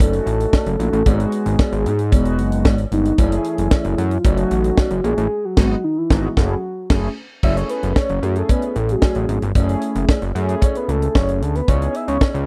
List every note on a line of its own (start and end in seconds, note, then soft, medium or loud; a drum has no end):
0.00 0.20 F#1 loud
0.00 0.63 A3 medium
0.00 0.63 C#4 medium
0.00 0.63 D#4 medium
0.00 0.07 F4 medium
0.00 1.08 A4 loud
0.00 kick loud
0.00 closed hi-hat loud
0.00 cowbell medium
0.07 0.67 F#4 medium
0.13 closed hi-hat medium
0.26 0.46 A1 medium
0.26 closed hi-hat medium
0.40 closed hi-hat medium
0.53 kick loud
0.53 snare loud
0.53 cowbell medium
0.66 0.76 F#1 loud
0.66 closed hi-hat medium
0.79 0.89 A#1 loud
0.79 1.00 A3 medium
0.79 1.01 C#4 medium
0.79 1.01 D#4 medium
0.79 1.01 F#4 medium
0.79 closed hi-hat medium
0.93 1.03 A1 loud
0.93 closed hi-hat medium
1.06 1.26 G#1 loud
1.06 1.90 G#3 medium
1.06 1.91 B3 medium
1.06 1.91 D#4 medium
1.06 1.91 F#4 medium
1.06 2.66 G#4 loud
1.06 kick loud
1.06 closed hi-hat medium
1.06 cowbell medium
1.20 closed hi-hat medium
1.32 closed hi-hat medium
1.46 1.56 G#1 medium
1.46 closed hi-hat medium
1.59 kick loud
1.59 snare loud
1.59 cowbell medium
1.72 1.87 G#1 loud
1.72 closed hi-hat soft
1.86 2.14 G#2 loud
1.86 closed hi-hat medium
1.99 closed hi-hat medium
2.12 2.40 E1 loud
2.12 2.75 G#3 medium
2.12 2.76 B3 medium
2.12 2.76 D#4 medium
2.12 2.76 F#4 loud
2.12 kick loud
2.12 closed hi-hat loud
2.12 cowbell medium
2.25 closed hi-hat medium
2.38 2.67 F#1 medium
2.38 closed hi-hat medium
2.52 closed hi-hat medium
2.65 2.85 G#1 medium
2.65 kick loud
2.65 snare loud
2.65 cowbell medium
2.78 closed hi-hat medium
2.91 3.12 G1 medium
2.91 3.13 G#3 medium
2.91 3.13 B3 medium
2.91 3.13 D#4 medium
2.91 3.17 D#4 medium
2.91 3.13 F#4 medium
2.91 closed hi-hat medium
3.05 closed hi-hat medium
3.18 3.38 F#1 loud
3.18 4.03 A3 medium
3.18 4.03 C#4 medium
3.18 4.03 E4 medium
3.18 4.20 E4 loud
3.18 4.03 G#4 medium
3.18 kick loud
3.18 closed hi-hat medium
3.18 cowbell medium
3.32 closed hi-hat medium
3.44 closed hi-hat medium
3.58 3.68 F#1 loud
3.58 closed hi-hat medium
3.71 kick loud
3.71 snare loud
3.71 cowbell medium
3.84 3.95 F#1 loud
3.84 closed hi-hat medium
3.98 4.18 F#2 medium
3.98 closed hi-hat medium
4.11 closed hi-hat medium
4.18 4.27 F4 medium
4.24 4.45 F#1 loud
4.24 4.88 A3 medium
4.24 4.88 C#4 medium
4.24 4.88 D#4 medium
4.24 4.88 F#4 medium
4.24 5.05 F#4 loud
4.24 kick loud
4.24 closed hi-hat loud
4.24 cowbell medium
4.37 closed hi-hat medium
4.51 4.71 A1 loud
4.51 closed hi-hat medium
4.64 closed hi-hat medium
4.77 kick loud
4.77 snare loud
4.77 cowbell medium
4.90 5.01 F#1 medium
4.90 closed hi-hat medium
5.04 5.14 A#1 loud
5.04 5.25 A3 medium
5.04 5.25 C#4 medium
5.04 5.25 D#4 medium
5.04 5.26 F#4 medium
5.04 5.46 G#4 loud
5.04 closed hi-hat medium
5.18 5.28 A1 loud
5.18 closed hi-hat medium
5.45 5.84 F#4 loud
5.57 5.75 G#1 loud
5.57 5.75 G#3 loud
5.57 5.75 B3 loud
5.57 5.75 D#4 loud
5.57 5.75 F#4 loud
5.57 kick loud
5.57 snare loud
5.57 crash medium
5.84 5.99 D#4 loud
5.98 6.40 E4 medium
6.09 6.29 G#1 loud
6.09 6.28 G#3 loud
6.09 6.28 B3 loud
6.09 6.28 D#4 loud
6.09 6.28 F#4 loud
6.09 kick loud
6.09 snare loud
6.37 6.55 F#1 loud
6.37 6.55 A3 loud
6.37 6.55 C#4 loud
6.37 6.55 E4 loud
6.37 6.91 F#4 medium
6.37 6.55 G#4 loud
6.37 kick loud
6.37 snare loud
6.90 7.08 F#1 loud
6.90 7.08 A3 loud
6.90 7.08 C#4 loud
6.90 7.08 E4 loud
6.90 7.08 G#4 loud
6.90 kick loud
6.90 snare loud
6.90 crash medium
7.43 7.63 F#1 loud
7.43 8.06 A3 medium
7.43 8.06 C#4 medium
7.43 8.07 E4 medium
7.43 8.07 G#4 medium
7.43 7.56 E5 loud
7.43 kick medium
7.43 crash medium
7.43 cowbell medium
7.57 7.69 C#5 medium
7.57 closed hi-hat medium
7.69 7.99 B4 loud
7.69 closed hi-hat medium
7.83 7.93 F#1 loud
7.83 closed hi-hat medium
7.96 8.25 C#5 loud
7.96 kick loud
7.96 snare loud
7.96 cowbell medium
8.09 8.20 F#1 loud
8.09 closed hi-hat soft
8.22 8.43 F#2 medium
8.22 8.75 A3 medium
8.22 8.76 C#4 medium
8.22 8.76 E4 medium
8.22 8.39 F#4 medium
8.22 8.76 G#4 medium
8.22 closed hi-hat medium
8.36 8.51 A4 medium
8.36 closed hi-hat soft
8.49 8.78 B4 loud
8.49 kick loud
8.49 closed hi-hat medium
8.49 cowbell medium
8.62 closed hi-hat medium
8.76 8.96 A1 medium
8.76 8.92 A4 medium
8.76 closed hi-hat medium
8.89 9.42 A3 medium
8.89 9.42 C#4 medium
8.89 9.42 E4 medium
8.89 9.43 F#4 medium
8.89 9.42 G#4 medium
8.89 closed hi-hat medium
9.02 kick loud
9.02 snare loud
9.02 cowbell medium
9.15 9.26 A1 medium
9.15 closed hi-hat medium
9.29 9.39 G#1 medium
9.29 closed hi-hat medium
9.42 9.52 G1 loud
9.42 closed hi-hat medium
9.55 9.75 F#1 loud
9.55 10.19 A3 medium
9.55 10.19 C#4 medium
9.55 10.19 E4 medium
9.55 10.19 G#4 loud
9.55 kick medium
9.55 closed hi-hat medium
9.55 cowbell medium
9.69 closed hi-hat medium
9.82 closed hi-hat medium
9.95 10.05 F#1 loud
9.95 closed hi-hat medium
10.09 kick loud
10.09 snare loud
10.09 cowbell medium
10.22 10.32 F#1 medium
10.22 closed hi-hat soft
10.35 10.55 F#2 loud
10.35 10.88 A3 medium
10.35 10.88 C#4 medium
10.35 10.88 E4 medium
10.35 10.88 G#4 loud
10.35 closed hi-hat medium
10.49 closed hi-hat medium
10.62 10.75 C#5 medium
10.62 kick loud
10.62 closed hi-hat medium
10.62 cowbell medium
10.75 10.91 B4 medium
10.75 closed hi-hat medium
10.88 11.08 C#2 medium
10.88 11.17 A4 medium
10.88 closed hi-hat medium
11.01 11.54 A3 medium
11.01 11.54 C#4 medium
11.01 11.54 E4 medium
11.01 11.54 G#4 medium
11.01 closed hi-hat medium
11.15 11.43 F#1 medium
11.15 11.42 C#5 medium
11.15 kick loud
11.15 snare loud
11.15 cowbell medium
11.28 closed hi-hat medium
11.41 11.61 D2 medium
11.41 11.57 A4 medium
11.41 closed hi-hat medium
11.55 11.70 B4 medium
11.55 closed hi-hat soft
11.67 11.88 C#2 loud
11.67 12.31 B3 medium
11.67 12.31 D#4 medium
11.67 12.31 E4 medium
11.67 12.32 G#4 medium
11.67 11.97 C#5 loud
11.67 kick loud
11.67 closed hi-hat medium
11.67 cowbell medium
11.82 closed hi-hat medium
11.94 12.08 E5 loud
11.94 closed hi-hat medium
12.08 12.18 C#2 loud
12.08 12.46 C#5 loud
12.08 closed hi-hat medium
12.21 kick loud
12.21 snare loud
12.21 cowbell medium
12.34 12.46 C#2 medium
12.34 closed hi-hat soft